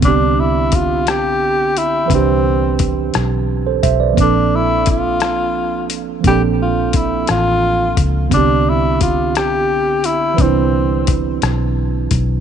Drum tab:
HH |x-xx-x|x-xx-x|x-xx-x|x-xx-x|
SD |---r--|---r--|---r--|---r--|
BD |o-o---|o-o--o|o-o---|o-o--o|

HH |x-xx-x|x-xx-x|
SD |---r--|---r--|
BD |o-o---|o-o--o|